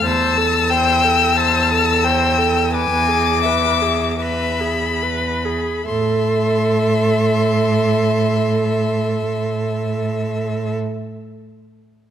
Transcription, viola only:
X:1
M:4/4
L:1/16
Q:1/4=38
K:Am
V:1 name="Viola"
c A c A c A c A B ^G B G B G B G | A16 |]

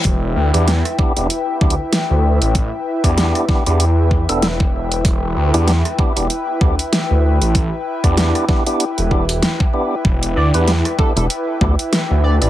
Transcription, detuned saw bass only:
X:1
M:4/4
L:1/16
Q:"Swing 16ths" 1/4=96
K:Em
V:1 name="Detuned saw bass" clef=bass
E,,,2 D,, E,,2 z2 E,,, z2 D,, z2 D,,2 A,,,- | A,,, z2 E,,2 z2 E,,4 E,,,4- E,,, | E,,,2 D,, E,,2 z2 E,,, z2 D,, z2 D,,2 A,,,- | A,,, z2 E,,2 z4 E,,, E,,,2 z4 |
E,,,2 D,, E,,2 z8 D,,2 A,,, |]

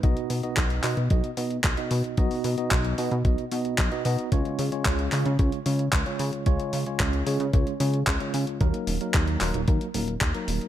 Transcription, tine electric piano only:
X:1
M:4/4
L:1/16
Q:1/4=112
K:Dbmix
V:1 name="Tine electric piano"
[=B,,=B,^D^F^d]3 [B,,B,DFd]3 [B,,B,DFd] z [B,,B,DFd] z [B,,B,DFd] z2 [B,,B,DFd]3 | [=B,,=B,^D^F^d]3 [B,,B,DFd]3 [B,,B,DFd] z [B,,B,DFd] z [B,,B,DFd]3 [B,,B,DFd] [B,DFd]2 | [D,A,DFd]3 [D,A,DFd]3 [D,A,DFd] z [D,A,DFd] z [D,A,DFd] z2 [D,A,DFd]3 | [D,A,DFd]3 [D,A,DFd]3 [D,A,DFd] z [D,A,DFd] z [D,A,DFd] z2 [D,A,DFd]3 |
[G,B,EB]3 [G,B,EB]3 [G,B,EB] z [G,B,EB] z [G,B,EB] z2 [G,B,EB]3 |]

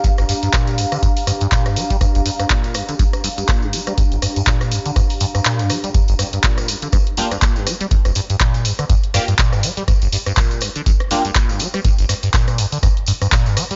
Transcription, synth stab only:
X:1
M:4/4
L:1/8
Q:"Swing 16ths" 1/4=122
K:Gm
V:1 name="Synth stab"
z8 | z8 | z8 | z4 z [B,DFG] z2 |
z4 z [B,DFG] z2 | z4 z [B,DFG] z2 | z8 |]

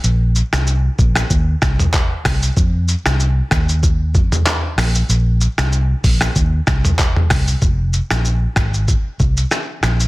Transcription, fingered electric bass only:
X:1
M:4/4
L:1/16
Q:"Swing 16ths" 1/4=95
K:Fm
V:1 name="Fingered electric bass" clef=bass
B,,,3 C,,3 B,,,2 E,,2 C,,2 z2 C,,2 | F,,3 C,,3 E,,4 F,,2 z2 B,,,2 | B,,,3 C,,3 B,,,2 E,,2 C,,2 z2 C,,2 | F,,,3 B,,,3 A,,,3 z C,,2 z2 B,,,2 |]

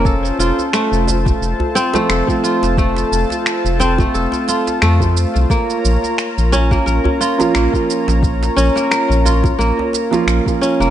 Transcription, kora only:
X:1
M:4/4
L:1/16
Q:"Swing 16ths" 1/4=88
K:Bbm
V:1 name="Kora"
=A z F z =A,4 z2 C A, A z F z | =A,4 z2 C A, =A z F z A,4 | B,4 z2 D B, B z F z B,4 | z2 D B, B z F z B,4 z2 D B, |]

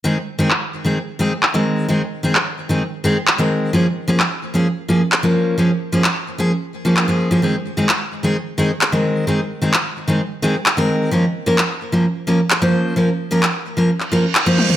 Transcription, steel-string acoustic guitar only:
X:1
M:4/4
L:1/16
Q:1/4=130
K:Ab
V:1 name="Steel-string acoustic guitar"
[E,A,CA] z2 [E,A,CA] z3 [E,A,CA] z2 [E,A,CA] z2 [E,A,CB]3 | [E,A,CA] z2 [E,A,CA] z3 [E,A,CA] z2 [E,A,CA] z2 [E,A,CB]3 | [F,B,DA] z2 [F,B,DA] z3 [F,B,DA] z2 [F,B,DA] z2 [F,B,DB]3 | [F,B,DA] z2 [F,B,DA] z3 [F,B,DA] z3 [F,B,DA]2 [F,B,DA]2 [F,B,DA] |
[E,A,CA] z2 [E,A,CA] z3 [E,A,CA] z2 [E,A,CA] z2 [E,A,CB]3 | [E,A,CA] z2 [E,A,CA] z3 [E,A,CA] z2 [E,A,CA] z2 [E,A,CB]3 | [F,B,DB] z2 [F,B,DB] z3 [F,B,DB] z2 [F,B,DB] z2 [F,B,Dc]3 | [F,B,DB] z2 [F,B,DB] z3 [F,B,DB] z2 [F,B,DB] z2 [F,B,Dc]3 |]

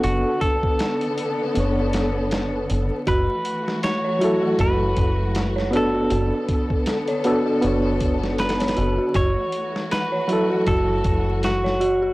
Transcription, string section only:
X:1
M:4/4
L:1/8
Q:"Swing 16ths" 1/4=79
K:F#m
V:1 name="String section"
[D,B,A]8 | [E,A,F]8 | [D,B,A]8 | [E,A,F]8 |]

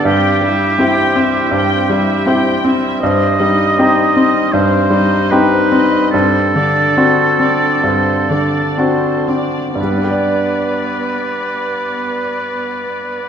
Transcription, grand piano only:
X:1
M:4/4
L:1/8
Q:1/4=72
K:G
V:1 name="Grand piano"
G,, G, [CEG] C G,, G, [CEG] C | G,, G, [C_EG] C G,, G, [CEG] C | G,, D, [CDF] C G,, D, [CDF] C | [G,,G,B,DGd]8 |]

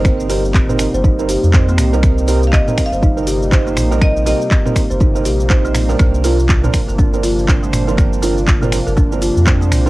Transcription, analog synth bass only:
X:1
M:4/4
L:1/16
Q:"Swing 16ths" 1/4=121
K:Cm
V:1 name="Analog synth bass" clef=bass
G,,,6- G,,, G,,,4 F,,3 C,,2- | C,,4- C,, z2 G,,,6- G,,, B,,,2- | B,,,3 z4 G,,,3 B,,,6 | C,,6 z G,,,8- G,,,- |
G,,,6- G,,, G,,,4 F,,3 C,,2 |]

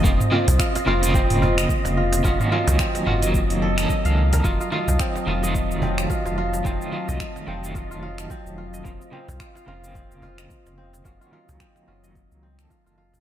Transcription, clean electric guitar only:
X:1
M:4/4
L:1/16
Q:"Swing 16ths" 1/4=109
K:none
V:1 name="Clean electric guitar"
[_D,_B,CF] z [D,B,CF] z3 [D,B,CF] [D,B,CF]8- [D,B,CF] | [_E,_B,_D_G]2 [E,_G,B,D]4 [E,B,DG] [E,G,B,]4 [E,B,DA]4- [E,B,DA] | [_E,_G,A,F] z [E,G,A,F] z3 [E,G,A,F] [E,G,A,F]8- [E,G,A,F] | [_E,_G,A,F]2 [E,G,A,F]4 [E,G,A,F] [E,G,A,F]8- [E,G,A,F] |
[_D,_B,CF] z [D,B,CF] z3 [D,B,CF] [D,B,CF]8- [D,B,CF] | [_E,_B,_D_G]2 [E,_G,B,D]4 [E,B,DG] [E,G,B,]4 [E,B,A]4- [E,B,A] |]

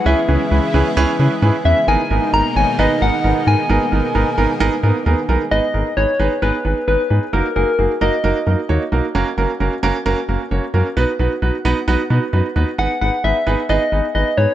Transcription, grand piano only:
X:1
M:4/4
L:1/16
Q:1/4=132
K:G#m
V:1 name="Grand piano"
[CEGB] z [CEGB] z [CEGB] z [CEGB] z [CEGB] z [CEGB] z [CEGB] z [CEGB] z | [B,DGA] z [B,DGA] z [B,DGA] z [B,DGc] z [B,DGB] z [B,DGA] z [B,DGA] z [B,DGA] z | [B,DGA] z [B,DGA] z [B,DGA] z [B,DGA] z [B,DGA] z [B,DGA] z [B,DGA] z [B,DGA] z | [B,DGB] z [B,DGA] z [B,DGB] z [B,DGB] z [B,DGB] z [B,DGB] z [B,DGB] z [B,DGB] z |
[A,DFA] z [A,DFG] z [A,DFG] z [A,DFA] z [A,DFA] z [A,DFA] z [A,DFc] z [A,DFA] z | [A,CFA] z [A,CFA] z [A,CFA] z [A,CFA] z [A,CFA] z [A,CFA] z [A,CFc] z [A,CFA] z | [B,DFB] z [B,DFB] z [B,DFB] z [B,DFB] z [B,DFB] z [B,DFB] z [B,DFB] z [B,DFB] z | [B,DGB] z [B,DGB] z [B,DGB] z [B,DGB] z [B,DGB] z [B,DGB] z [B,DGB] z [B,DGB] z |]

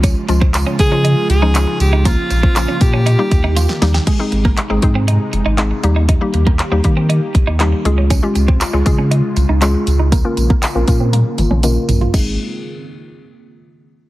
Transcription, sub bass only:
X:1
M:4/4
L:1/16
Q:1/4=119
K:Ab
V:1 name="Sub bass" clef=bass
D,,2 D,,4 D,4 D,,4 D,,2- | D,,2 B,,,4 B,,4 E,,4 E,,2 | z2 A,,,3 A,,, A,,4 F,,, A,,,3 E,,2- | E,,2 E,,3 E,, E,4 C,, E,,3 D,,2- |
D,,2 D,,3 D,, D,4 C,, D,,3 D,,2- | D,,2 B,,,3 B,,, B,,4 G,,, B,,,3 B,,,2 | A,,,2 z12 z2 |]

